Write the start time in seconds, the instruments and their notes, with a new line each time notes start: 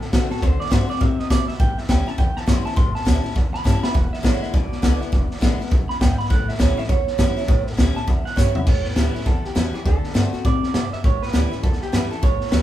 Already playing: steel-string acoustic guitar A2, clean electric guitar A4
0.01 muted upright bass stroke, snare
0.13 upright bass B2, steel-string acoustic guitar D3 A3 C4 F#4, kick, snare, hi-hat pedal
0.31 steel-string acoustic guitar C4 F#4, clean electric guitar A4, muted upright bass stroke, snare
0.37 snare
0.42 upright bass D2, steel-string acoustic guitar D3, clean electric guitar C5, kick, snare
0.60 clean electric guitar D5, snare
0.66 snare
0.71 upright bass G2, steel-string acoustic guitar D3 A3 C4 F#4, clean electric guitar C5, kick, snare, hi-hat pedal
0.89 steel-string acoustic guitar C4 F#4, clean electric guitar D5, muted upright bass stroke, snare
0.96 snare
1.01 upright bass A2, steel-string acoustic guitar C3, clean electric guitar E5, kick, snare
1.19 clean electric guitar D#5, muted upright bass stroke, snare
1.30 steel-string acoustic guitar B2, upright bass C3, clean electric guitar D5, kick, snare, hi-hat pedal
1.48 clean electric guitar E5, muted upright bass stroke, snare
1.54 snare
1.60 upright bass A1, steel-string acoustic guitar A2, clean electric guitar G5, kick, snare
1.78 clean electric guitar E5, muted upright bass stroke, snare
1.84 snare
1.89 upright bass D2, steel-string acoustic guitar E3 G3 C#4 E4, clean electric guitar G5, kick, snare, hi-hat pedal
2.06 steel-string acoustic guitar C#4 E4, clean electric guitar A5, snare
2.18 steel-string acoustic guitar E2, upright bass E2, clean electric guitar G5, kick, snare
2.36 clean electric guitar A5, muted upright bass stroke, snare
2.46 upright bass F#2, steel-string acoustic guitar E3 G3 C#4 E4, clean electric guitar C6, kick, snare, hi-hat pedal
2.65 steel-string acoustic guitar C#4 E4, clean electric guitar A5, muted upright bass stroke, snare
2.71 snare
2.76 upright bass A1, steel-string acoustic guitar A2, clean electric guitar C6, kick, snare
2.95 clean electric guitar A5, muted upright bass stroke, snare
3.01 snare
3.05 upright bass D2, steel-string acoustic guitar E3 G3 C#4 E4, kick, snare, hi-hat pedal
3.24 steel-string acoustic guitar C#4 E4, snare
3.31 snare
3.35 steel-string acoustic guitar E2, upright bass E2, kick, snare
3.54 clean electric guitar B5, muted upright bass stroke, snare
3.64 upright bass G2, steel-string acoustic guitar E3 G3 C#4 E4, clean electric guitar A5, kick, snare, hi-hat pedal
3.82 steel-string acoustic guitar C#4 E4, clean electric guitar B5, snare
3.94 upright bass E1, steel-string acoustic guitar E2, clean electric guitar F#5, kick, snare
4.13 clean electric guitar E5, muted upright bass stroke, snare
4.19 steel-string acoustic guitar D3, snare
4.24 upright bass A1, steel-string acoustic guitar G#3 B3 E4, clean electric guitar C#5, kick, snare, hi-hat pedal
4.43 clean electric guitar E5, snare
4.54 upright bass B1, steel-string acoustic guitar B2, clean electric guitar D5, kick, snare
4.72 muted upright bass stroke, snare
4.82 upright bass C#2, steel-string acoustic guitar D3 G#3 B3 E4, kick, snare, hi-hat pedal
5.00 steel-string acoustic guitar B3 E4, muted upright bass stroke, snare
5.12 upright bass E1, steel-string acoustic guitar E2, kick, snare
5.31 muted upright bass stroke, snare
5.37 snare
5.41 upright bass A1, steel-string acoustic guitar D3 G#3 B3 E4, kick, snare, hi-hat pedal
5.59 steel-string acoustic guitar B3 E4, muted upright bass stroke, snare
5.66 snare
5.71 upright bass B1, steel-string acoustic guitar F#2, kick, snare
5.89 clean electric guitar B5, muted upright bass stroke, snare
6.01 upright bass D2, steel-string acoustic guitar G#2, clean electric guitar G5, kick, snare, hi-hat pedal
6.18 clean electric guitar B5, snare
6.25 snare
6.30 upright bass A1, steel-string acoustic guitar A2, clean electric guitar F#5, kick, snare
6.48 clean electric guitar E5, muted upright bass stroke, snare
6.54 snare
6.59 upright bass D2, steel-string acoustic guitar E3 G3 C#4 E4, clean electric guitar C#5, kick, snare, hi-hat pedal
6.77 steel-string acoustic guitar C#4 E4, clean electric guitar E5, snare
6.84 snare
6.89 steel-string acoustic guitar E2, upright bass E2, clean electric guitar C#5, kick, snare
7.07 muted upright bass stroke, snare
7.18 upright bass F#2, steel-string acoustic guitar E3 G3 C#4 E4, kick, snare, hi-hat pedal
7.37 steel-string acoustic guitar C#4 E4, muted upright bass stroke, snare
7.43 snare
7.48 upright bass A1, steel-string acoustic guitar A2, kick, snare
7.67 muted upright bass stroke, snare
7.73 snare
7.77 upright bass D2, steel-string acoustic guitar E3 G3 C#4 E4, kick, snare, hi-hat pedal
7.95 steel-string acoustic guitar C#4 E4, clean electric guitar A5, muted upright bass stroke, snare
8.07 steel-string acoustic guitar E2, upright bass E2, clean electric guitar E5, kick, snare
8.25 clean electric guitar F#5, muted upright bass stroke, snare
8.36 upright bass G2, steel-string acoustic guitar E3 G3 C#4 E4, clean electric guitar C#5, kick, snare, hi-hat pedal
8.55 steel-string acoustic guitar C#4 E4, clean electric guitar E5, floor tom
8.67 upright bass A1, steel-string acoustic guitar A2, clean electric guitar C#5, kick, snare, crash
8.85 clean electric guitar B4, muted upright bass stroke, snare
8.91 snare
8.96 upright bass D2, steel-string acoustic guitar E3 G3 C#4 E4, snare, hi-hat pedal
9.14 steel-string acoustic guitar C#4 E4, snare
9.20 snare
9.26 steel-string acoustic guitar E2, upright bass E2, clean electric guitar A4, kick, snare
9.45 clean electric guitar G4, muted upright bass stroke, snare
9.55 upright bass E2, steel-string acoustic guitar E3 G3 C#4 E4, clean electric guitar F#4, snare, hi-hat pedal
9.73 steel-string acoustic guitar C#4 E4, clean electric guitar G4, muted upright bass stroke, snare
9.85 upright bass D2, steel-string acoustic guitar D3, clean electric guitar A4, kick, snare
10.04 snare
10.10 snare
10.14 upright bass G2, steel-string acoustic guitar D3 A3 C4 F#4, snare, hi-hat pedal
10.33 steel-string acoustic guitar C4 F#4, muted upright bass stroke, snare
10.45 upright bass A2, steel-string acoustic guitar C3, clean electric guitar D5, kick, snare
10.63 muted upright bass stroke, snare
10.74 steel-string acoustic guitar G2, upright bass C3, snare, hi-hat pedal
10.93 clean electric guitar E5, muted upright bass stroke, snare
11.04 upright bass A1, steel-string acoustic guitar A2, clean electric guitar C#5, kick, snare
11.22 clean electric guitar B4, muted upright bass stroke, snare
11.28 snare
11.33 upright bass D2, steel-string acoustic guitar E3 G3 C#4 E4, snare, hi-hat pedal
11.51 steel-string acoustic guitar C#4 E4, snare
11.63 steel-string acoustic guitar E2, upright bass E2, clean electric guitar A4, kick, snare
11.73 snare
11.82 clean electric guitar G4, muted upright bass stroke, snare
11.92 upright bass F#2, steel-string acoustic guitar E3 G3 C#4 E4, clean electric guitar B4, snare, hi-hat pedal
12.11 steel-string acoustic guitar C#4 E4, clean electric guitar A4, muted upright bass stroke, snare
12.23 upright bass A1, steel-string acoustic guitar A2, clean electric guitar C#5, kick, snare
12.41 muted upright bass stroke, snare
12.47 snare
12.52 upright bass D2, steel-string acoustic guitar E3 G3 C#4 E4, clean electric guitar B4, snare, hi-hat pedal